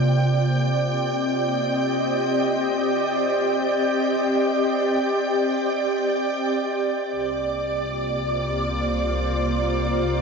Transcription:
0.00 1.83 A#3 medium
0.00 2.90 F4 medium
0.00 2.08 C5 medium
0.00 10.22 D5 medium
0.00 7.19 G5 medium
0.00 7.20 G6 medium
0.09 9.07 C4 medium
0.43 9.95 G4 medium
0.77 7.16 D#5 medium
7.13 10.22 C2 medium
7.13 10.22 A#3 medium
7.13 10.22 D5 medium
7.13 10.22 D6 medium
7.47 10.22 F4 medium
7.90 10.22 C5 medium

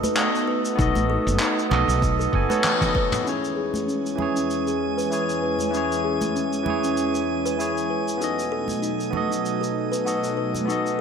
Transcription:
0.00 3.23 A3 medium
0.00 0.15 B3 medium
0.00 3.22 B3 medium
0.00 3.23 D#4 medium
0.00 0.16 F#4 medium
0.00 0.18 A4 medium
0.00 0.16 B4 loud
0.00 0.18 D#5 medium
0.00 high conga medium
0.04 shaker medium
0.15 0.33 B3 medium
0.15 0.33 F#4 medium
0.15 0.34 A4 medium
0.15 0.34 D#5 medium
0.15 0.26 F#5 medium
0.15 clap loud
0.15 shaker medium
0.35 shaker medium
0.47 0.63 B4 medium
0.65 shaker medium
0.76 0.91 B1 loud
0.76 1.67 B3 medium
0.76 0.94 D#4 medium
0.76 1.68 F#4 medium
0.76 kick loud
0.76 shaker medium
0.80 1.69 A4 medium
0.80 1.70 D#5 medium
0.95 1.16 A1 medium
0.95 high conga medium
0.95 shaker soft
1.10 1.26 A4 loud
1.27 1.36 F#1 loud
1.27 shaker medium
1.40 1.56 D#4 medium
1.40 clap medium
1.40 shaker medium
1.59 shaker soft
1.70 1.83 B1 medium
1.70 2.30 B3 medium
1.70 2.30 F#4 medium
1.70 2.31 A4 medium
1.70 2.31 D#5 medium
1.70 clap soft
1.70 high conga medium
1.70 low conga medium
1.88 2.26 B1 medium
1.88 2.01 D#4 medium
1.88 shaker medium
2.02 kick medium
2.02 shaker medium
2.19 2.32 A4 medium
2.19 shaker soft
2.32 2.45 F#1 medium
2.32 2.47 B3 medium
2.32 2.48 F#4 medium
2.32 2.48 A4 medium
2.32 2.49 G#5 medium
2.32 kick medium
2.49 2.73 B3 medium
2.49 2.73 F#4 medium
2.49 2.74 A4 medium
2.49 2.62 B4 loud
2.49 2.75 C#5 medium
2.49 high conga medium
2.49 shaker medium
2.64 2.73 F#5 medium
2.64 clap loud
2.64 high tom medium
2.64 shaker medium
2.79 3.22 B3 medium
2.79 3.22 F#4 medium
2.79 3.23 A4 medium
2.79 3.23 D#5 medium
2.79 kick medium
2.79 high tom medium
2.79 shaker soft
2.95 3.11 B4 medium
2.95 kick loud
3.12 mid tom medium
3.12 shaker medium
3.23 8.17 E2 medium
3.23 4.14 E3 medium
3.23 8.17 E3 medium
3.23 8.17 G#3 medium
3.23 3.41 C#4 medium
3.23 8.17 C#4 medium
3.23 4.15 E4 medium
3.23 11.01 G#5 medium
3.27 4.16 G#4 medium
3.27 4.17 C#5 medium
3.27 shaker medium
3.44 shaker soft
3.57 3.73 G#4 medium
3.74 high conga medium
3.74 shaker medium
3.87 4.03 C#4 medium
3.87 shaker medium
4.06 shaker soft
4.15 5.07 E3 medium
4.15 5.08 E4 medium
4.15 high conga soft
4.15 low conga medium
4.20 5.09 G#4 medium
4.20 5.10 C#5 medium
4.36 4.48 C#4 medium
4.36 shaker medium
4.50 shaker medium
4.67 4.79 G#4 medium
4.67 shaker soft
4.97 5.10 B4 medium
4.97 shaker medium
5.10 5.28 E3 medium
5.10 5.28 E4 medium
5.10 5.29 G#4 medium
5.10 5.29 C#5 medium
5.10 5.21 E5 medium
5.10 shaker medium
5.29 shaker soft
5.43 5.58 B4 medium
5.59 high conga medium
5.59 shaker medium
5.71 6.61 E3 medium
5.71 5.89 C#4 medium
5.71 6.63 E4 medium
5.71 shaker medium
5.75 6.64 G#4 medium
5.75 6.65 C#5 medium
5.92 shaker soft
6.04 6.21 G#4 medium
6.21 high conga medium
6.21 shaker medium
6.35 6.51 C#4 medium
6.35 shaker medium
6.53 shaker soft
6.63 7.54 E3 medium
6.63 7.55 E4 medium
6.63 high conga medium
6.63 low conga medium
6.68 7.57 G#4 medium
6.68 7.58 C#5 medium
6.84 6.96 C#4 medium
6.84 shaker medium
6.97 shaker medium
7.15 7.27 G#4 medium
7.15 shaker soft
7.46 7.58 B4 medium
7.46 shaker medium
7.58 7.75 E3 medium
7.58 7.76 E4 medium
7.58 7.76 G#4 medium
7.58 7.77 C#5 medium
7.58 7.68 E5 medium
7.58 shaker medium
7.78 shaker soft
7.90 8.05 B4 medium
8.08 shaker medium
8.17 11.01 B2 medium
8.17 11.01 F#3 medium
8.17 11.01 A3 medium
8.17 9.09 B3 medium
8.17 11.01 D#4 medium
8.17 8.37 D#4 medium
8.17 9.10 F#4 medium
8.22 9.11 A4 medium
8.22 9.12 D#5 medium
8.22 shaker medium
8.39 shaker soft
8.52 8.68 A4 medium
8.68 high conga medium
8.68 shaker medium
8.82 8.98 D#4 medium
8.82 shaker medium
9.00 shaker soft
9.11 10.02 B3 medium
9.11 10.03 F#4 medium
9.11 10.04 A4 medium
9.11 high conga medium
9.11 low conga medium
9.17 10.05 D#5 medium
9.31 9.43 D#4 medium
9.31 shaker medium
9.46 shaker medium
9.61 9.74 A4 medium
9.61 shaker soft
9.92 10.05 B4 medium
9.92 shaker medium
10.05 10.23 B3 medium
10.05 10.23 F#4 medium
10.05 10.24 A4 medium
10.05 10.24 D#5 medium
10.05 10.16 F#5 medium
10.05 shaker medium
10.24 shaker soft
10.37 10.53 B4 medium
10.55 high conga medium
10.55 shaker medium
10.65 11.01 B3 medium
10.65 10.84 D#4 medium
10.65 11.01 F#4 medium
10.70 11.01 A4 medium
10.70 11.01 D#5 medium
10.70 shaker medium
10.86 shaker soft

